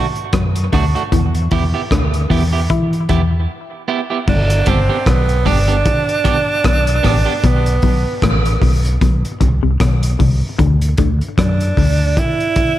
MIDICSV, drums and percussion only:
0, 0, Header, 1, 2, 480
1, 0, Start_track
1, 0, Key_signature, 1, "major"
1, 0, Tempo, 789474
1, 680, Time_signature, 4, 2, 24, 8
1, 7774, End_track
2, 0, Start_track
2, 0, Title_t, "Drums"
2, 94, Note_on_c, 9, 42, 33
2, 155, Note_off_c, 9, 42, 0
2, 199, Note_on_c, 9, 42, 93
2, 201, Note_on_c, 9, 36, 123
2, 205, Note_on_c, 9, 37, 111
2, 260, Note_off_c, 9, 42, 0
2, 262, Note_off_c, 9, 36, 0
2, 266, Note_off_c, 9, 37, 0
2, 338, Note_on_c, 9, 42, 60
2, 398, Note_off_c, 9, 42, 0
2, 441, Note_on_c, 9, 46, 59
2, 444, Note_on_c, 9, 36, 97
2, 452, Note_on_c, 9, 37, 70
2, 502, Note_off_c, 9, 46, 0
2, 505, Note_off_c, 9, 36, 0
2, 512, Note_off_c, 9, 37, 0
2, 581, Note_on_c, 9, 42, 30
2, 642, Note_off_c, 9, 42, 0
2, 682, Note_on_c, 9, 36, 97
2, 682, Note_on_c, 9, 42, 78
2, 743, Note_off_c, 9, 36, 0
2, 743, Note_off_c, 9, 42, 0
2, 818, Note_on_c, 9, 42, 54
2, 879, Note_off_c, 9, 42, 0
2, 917, Note_on_c, 9, 46, 57
2, 922, Note_on_c, 9, 36, 98
2, 977, Note_off_c, 9, 46, 0
2, 983, Note_off_c, 9, 36, 0
2, 1161, Note_on_c, 9, 36, 93
2, 1165, Note_on_c, 9, 42, 81
2, 1167, Note_on_c, 9, 37, 94
2, 1222, Note_off_c, 9, 36, 0
2, 1226, Note_off_c, 9, 42, 0
2, 1228, Note_off_c, 9, 37, 0
2, 1299, Note_on_c, 9, 42, 46
2, 1360, Note_off_c, 9, 42, 0
2, 1400, Note_on_c, 9, 36, 78
2, 1404, Note_on_c, 9, 46, 88
2, 1461, Note_off_c, 9, 36, 0
2, 1465, Note_off_c, 9, 46, 0
2, 1640, Note_on_c, 9, 42, 68
2, 1642, Note_on_c, 9, 36, 106
2, 1701, Note_off_c, 9, 42, 0
2, 1703, Note_off_c, 9, 36, 0
2, 1781, Note_on_c, 9, 42, 42
2, 1842, Note_off_c, 9, 42, 0
2, 1878, Note_on_c, 9, 42, 72
2, 1881, Note_on_c, 9, 36, 84
2, 1939, Note_off_c, 9, 42, 0
2, 1942, Note_off_c, 9, 36, 0
2, 2599, Note_on_c, 9, 49, 87
2, 2600, Note_on_c, 9, 36, 105
2, 2660, Note_off_c, 9, 49, 0
2, 2661, Note_off_c, 9, 36, 0
2, 2736, Note_on_c, 9, 42, 65
2, 2796, Note_off_c, 9, 42, 0
2, 2833, Note_on_c, 9, 42, 82
2, 2840, Note_on_c, 9, 36, 96
2, 2894, Note_off_c, 9, 42, 0
2, 2900, Note_off_c, 9, 36, 0
2, 3079, Note_on_c, 9, 36, 104
2, 3081, Note_on_c, 9, 42, 83
2, 3083, Note_on_c, 9, 37, 101
2, 3140, Note_off_c, 9, 36, 0
2, 3142, Note_off_c, 9, 42, 0
2, 3144, Note_off_c, 9, 37, 0
2, 3215, Note_on_c, 9, 42, 45
2, 3276, Note_off_c, 9, 42, 0
2, 3319, Note_on_c, 9, 36, 86
2, 3323, Note_on_c, 9, 46, 88
2, 3380, Note_off_c, 9, 36, 0
2, 3384, Note_off_c, 9, 46, 0
2, 3460, Note_on_c, 9, 42, 36
2, 3520, Note_off_c, 9, 42, 0
2, 3559, Note_on_c, 9, 42, 77
2, 3561, Note_on_c, 9, 36, 101
2, 3620, Note_off_c, 9, 42, 0
2, 3622, Note_off_c, 9, 36, 0
2, 3701, Note_on_c, 9, 42, 44
2, 3762, Note_off_c, 9, 42, 0
2, 3799, Note_on_c, 9, 42, 65
2, 3801, Note_on_c, 9, 36, 95
2, 3860, Note_off_c, 9, 42, 0
2, 3861, Note_off_c, 9, 36, 0
2, 4039, Note_on_c, 9, 42, 91
2, 4040, Note_on_c, 9, 36, 116
2, 4045, Note_on_c, 9, 37, 113
2, 4100, Note_off_c, 9, 42, 0
2, 4101, Note_off_c, 9, 36, 0
2, 4106, Note_off_c, 9, 37, 0
2, 4177, Note_on_c, 9, 42, 63
2, 4238, Note_off_c, 9, 42, 0
2, 4282, Note_on_c, 9, 46, 70
2, 4283, Note_on_c, 9, 36, 89
2, 4293, Note_on_c, 9, 37, 70
2, 4343, Note_off_c, 9, 46, 0
2, 4344, Note_off_c, 9, 36, 0
2, 4354, Note_off_c, 9, 37, 0
2, 4522, Note_on_c, 9, 36, 111
2, 4523, Note_on_c, 9, 42, 89
2, 4582, Note_off_c, 9, 36, 0
2, 4584, Note_off_c, 9, 42, 0
2, 4657, Note_on_c, 9, 42, 59
2, 4718, Note_off_c, 9, 42, 0
2, 4755, Note_on_c, 9, 46, 58
2, 4761, Note_on_c, 9, 36, 102
2, 4816, Note_off_c, 9, 46, 0
2, 4821, Note_off_c, 9, 36, 0
2, 4999, Note_on_c, 9, 36, 113
2, 5005, Note_on_c, 9, 42, 87
2, 5007, Note_on_c, 9, 37, 111
2, 5060, Note_off_c, 9, 36, 0
2, 5066, Note_off_c, 9, 42, 0
2, 5068, Note_off_c, 9, 37, 0
2, 5140, Note_on_c, 9, 42, 48
2, 5201, Note_off_c, 9, 42, 0
2, 5239, Note_on_c, 9, 36, 93
2, 5244, Note_on_c, 9, 46, 93
2, 5299, Note_off_c, 9, 36, 0
2, 5305, Note_off_c, 9, 46, 0
2, 5379, Note_on_c, 9, 42, 41
2, 5440, Note_off_c, 9, 42, 0
2, 5481, Note_on_c, 9, 36, 114
2, 5481, Note_on_c, 9, 42, 70
2, 5541, Note_off_c, 9, 36, 0
2, 5542, Note_off_c, 9, 42, 0
2, 5623, Note_on_c, 9, 42, 44
2, 5683, Note_off_c, 9, 42, 0
2, 5720, Note_on_c, 9, 36, 92
2, 5720, Note_on_c, 9, 42, 72
2, 5780, Note_off_c, 9, 42, 0
2, 5781, Note_off_c, 9, 36, 0
2, 5959, Note_on_c, 9, 36, 125
2, 5959, Note_on_c, 9, 42, 90
2, 5965, Note_on_c, 9, 37, 105
2, 6020, Note_off_c, 9, 36, 0
2, 6020, Note_off_c, 9, 42, 0
2, 6026, Note_off_c, 9, 37, 0
2, 6097, Note_on_c, 9, 42, 68
2, 6158, Note_off_c, 9, 42, 0
2, 6200, Note_on_c, 9, 46, 64
2, 6201, Note_on_c, 9, 36, 100
2, 6261, Note_off_c, 9, 46, 0
2, 6262, Note_off_c, 9, 36, 0
2, 6439, Note_on_c, 9, 36, 109
2, 6440, Note_on_c, 9, 42, 77
2, 6500, Note_off_c, 9, 36, 0
2, 6501, Note_off_c, 9, 42, 0
2, 6575, Note_on_c, 9, 42, 61
2, 6636, Note_off_c, 9, 42, 0
2, 6673, Note_on_c, 9, 42, 79
2, 6678, Note_on_c, 9, 36, 98
2, 6734, Note_off_c, 9, 42, 0
2, 6739, Note_off_c, 9, 36, 0
2, 6817, Note_on_c, 9, 42, 37
2, 6878, Note_off_c, 9, 42, 0
2, 6917, Note_on_c, 9, 36, 105
2, 6922, Note_on_c, 9, 42, 91
2, 6924, Note_on_c, 9, 37, 101
2, 6978, Note_off_c, 9, 36, 0
2, 6983, Note_off_c, 9, 42, 0
2, 6984, Note_off_c, 9, 37, 0
2, 7056, Note_on_c, 9, 42, 51
2, 7116, Note_off_c, 9, 42, 0
2, 7158, Note_on_c, 9, 36, 82
2, 7163, Note_on_c, 9, 46, 77
2, 7218, Note_off_c, 9, 36, 0
2, 7224, Note_off_c, 9, 46, 0
2, 7400, Note_on_c, 9, 36, 104
2, 7401, Note_on_c, 9, 42, 77
2, 7460, Note_off_c, 9, 36, 0
2, 7462, Note_off_c, 9, 42, 0
2, 7541, Note_on_c, 9, 42, 40
2, 7602, Note_off_c, 9, 42, 0
2, 7635, Note_on_c, 9, 42, 78
2, 7638, Note_on_c, 9, 36, 93
2, 7696, Note_off_c, 9, 42, 0
2, 7699, Note_off_c, 9, 36, 0
2, 7774, End_track
0, 0, End_of_file